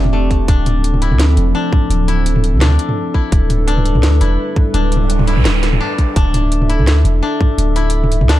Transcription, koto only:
0, 0, Header, 1, 2, 480
1, 0, Start_track
1, 0, Tempo, 355030
1, 650, Time_signature, 4, 2, 24, 8
1, 11350, End_track
2, 0, Start_track
2, 0, Title_t, "Koto"
2, 0, Program_c, 0, 107
2, 0, Note_on_c, 0, 62, 76
2, 174, Note_on_c, 0, 57, 78
2, 649, Note_off_c, 0, 62, 0
2, 655, Note_on_c, 0, 62, 99
2, 1375, Note_on_c, 0, 64, 78
2, 2086, Note_off_c, 0, 62, 0
2, 2092, Note_on_c, 0, 62, 102
2, 2806, Note_off_c, 0, 64, 0
2, 2811, Note_on_c, 0, 64, 79
2, 3524, Note_off_c, 0, 62, 0
2, 3529, Note_on_c, 0, 62, 106
2, 4074, Note_off_c, 0, 57, 0
2, 4244, Note_off_c, 0, 64, 0
2, 4249, Note_on_c, 0, 64, 78
2, 4963, Note_off_c, 0, 62, 0
2, 4968, Note_on_c, 0, 62, 106
2, 5684, Note_off_c, 0, 64, 0
2, 5690, Note_on_c, 0, 64, 82
2, 6402, Note_off_c, 0, 62, 0
2, 6407, Note_on_c, 0, 62, 101
2, 7123, Note_off_c, 0, 64, 0
2, 7129, Note_on_c, 0, 64, 77
2, 7842, Note_off_c, 0, 62, 0
2, 7848, Note_on_c, 0, 62, 100
2, 8325, Note_off_c, 0, 62, 0
2, 8330, Note_on_c, 0, 62, 101
2, 9045, Note_off_c, 0, 64, 0
2, 9050, Note_on_c, 0, 64, 76
2, 9763, Note_off_c, 0, 62, 0
2, 9768, Note_on_c, 0, 62, 100
2, 10485, Note_off_c, 0, 64, 0
2, 10491, Note_on_c, 0, 64, 81
2, 11204, Note_off_c, 0, 62, 0
2, 11209, Note_on_c, 0, 62, 107
2, 11350, Note_off_c, 0, 62, 0
2, 11350, Note_off_c, 0, 64, 0
2, 11350, End_track
0, 0, End_of_file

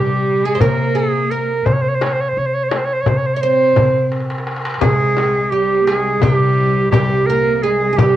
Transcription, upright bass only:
0, 0, Header, 1, 2, 480
1, 0, Start_track
1, 0, Tempo, 703400
1, 1131, Time_signature, 9, 3, 24, 8
1, 5571, End_track
2, 0, Start_track
2, 0, Title_t, "Upright bass"
2, 0, Program_c, 0, 32
2, 0, Note_on_c, 0, 48, 86
2, 385, Note_off_c, 0, 48, 0
2, 416, Note_on_c, 0, 48, 83
2, 1106, Note_off_c, 0, 48, 0
2, 1138, Note_on_c, 0, 48, 86
2, 1587, Note_off_c, 0, 48, 0
2, 1616, Note_on_c, 0, 48, 69
2, 2066, Note_off_c, 0, 48, 0
2, 2097, Note_on_c, 0, 48, 86
2, 2547, Note_off_c, 0, 48, 0
2, 2577, Note_on_c, 0, 48, 77
2, 3266, Note_off_c, 0, 48, 0
2, 3290, Note_on_c, 0, 48, 96
2, 4223, Note_off_c, 0, 48, 0
2, 4250, Note_on_c, 0, 48, 85
2, 4702, Note_off_c, 0, 48, 0
2, 4731, Note_on_c, 0, 48, 77
2, 5422, Note_off_c, 0, 48, 0
2, 5447, Note_on_c, 0, 48, 94
2, 5571, Note_off_c, 0, 48, 0
2, 5571, End_track
0, 0, End_of_file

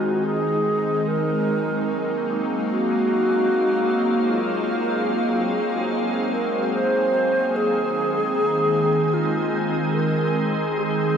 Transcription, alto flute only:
0, 0, Header, 1, 2, 480
1, 0, Start_track
1, 0, Tempo, 500000
1, 10725, End_track
2, 0, Start_track
2, 0, Title_t, "Alto flute"
2, 0, Program_c, 0, 73
2, 0, Note_on_c, 0, 66, 78
2, 236, Note_on_c, 0, 68, 88
2, 251, Note_off_c, 0, 66, 0
2, 1032, Note_on_c, 0, 70, 87
2, 1047, Note_off_c, 0, 68, 0
2, 2331, Note_off_c, 0, 70, 0
2, 2599, Note_on_c, 0, 66, 93
2, 4133, Note_on_c, 0, 65, 77
2, 4148, Note_off_c, 0, 66, 0
2, 5308, Note_off_c, 0, 65, 0
2, 6058, Note_on_c, 0, 70, 82
2, 6437, Note_off_c, 0, 70, 0
2, 6469, Note_on_c, 0, 72, 101
2, 7259, Note_on_c, 0, 68, 94
2, 7274, Note_off_c, 0, 72, 0
2, 8771, Note_on_c, 0, 65, 82
2, 8785, Note_off_c, 0, 68, 0
2, 9540, Note_on_c, 0, 70, 85
2, 9555, Note_off_c, 0, 65, 0
2, 10088, Note_off_c, 0, 70, 0
2, 10342, Note_on_c, 0, 68, 83
2, 10725, Note_off_c, 0, 68, 0
2, 10725, End_track
0, 0, End_of_file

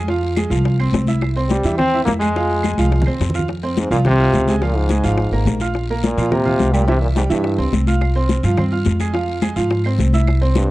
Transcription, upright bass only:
0, 0, Header, 1, 2, 480
1, 0, Start_track
1, 0, Key_signature, -4, "minor"
1, 0, Tempo, 283152
1, 137, Time_signature, 4, 2, 24, 8
1, 18152, End_track
2, 0, Start_track
2, 0, Title_t, "Upright bass"
2, 0, Program_c, 0, 32
2, 0, Note_on_c, 0, 41, 91
2, 766, Note_off_c, 0, 41, 0
2, 847, Note_on_c, 0, 36, 100
2, 1523, Note_off_c, 0, 36, 0
2, 1565, Note_on_c, 0, 36, 85
2, 2682, Note_off_c, 0, 36, 0
2, 2773, Note_on_c, 0, 40, 90
2, 3447, Note_off_c, 0, 40, 0
2, 3494, Note_on_c, 0, 41, 89
2, 4607, Note_off_c, 0, 41, 0
2, 4706, Note_on_c, 0, 36, 91
2, 5151, Note_off_c, 0, 36, 0
2, 5182, Note_on_c, 0, 39, 67
2, 5405, Note_off_c, 0, 39, 0
2, 5427, Note_on_c, 0, 41, 90
2, 6533, Note_off_c, 0, 41, 0
2, 6621, Note_on_c, 0, 36, 97
2, 7292, Note_off_c, 0, 36, 0
2, 7347, Note_on_c, 0, 37, 98
2, 8453, Note_off_c, 0, 37, 0
2, 8538, Note_on_c, 0, 32, 93
2, 8986, Note_off_c, 0, 32, 0
2, 9012, Note_on_c, 0, 32, 71
2, 9233, Note_off_c, 0, 32, 0
2, 9243, Note_on_c, 0, 34, 90
2, 10361, Note_off_c, 0, 34, 0
2, 10463, Note_on_c, 0, 46, 97
2, 11132, Note_off_c, 0, 46, 0
2, 11178, Note_on_c, 0, 36, 90
2, 12287, Note_off_c, 0, 36, 0
2, 12382, Note_on_c, 0, 43, 88
2, 12827, Note_off_c, 0, 43, 0
2, 12853, Note_on_c, 0, 37, 72
2, 13079, Note_off_c, 0, 37, 0
2, 13097, Note_on_c, 0, 36, 87
2, 14206, Note_off_c, 0, 36, 0
2, 14299, Note_on_c, 0, 43, 96
2, 14968, Note_off_c, 0, 43, 0
2, 15018, Note_on_c, 0, 41, 96
2, 16125, Note_off_c, 0, 41, 0
2, 16214, Note_on_c, 0, 44, 93
2, 16884, Note_off_c, 0, 44, 0
2, 16934, Note_on_c, 0, 36, 98
2, 18041, Note_off_c, 0, 36, 0
2, 18152, End_track
0, 0, End_of_file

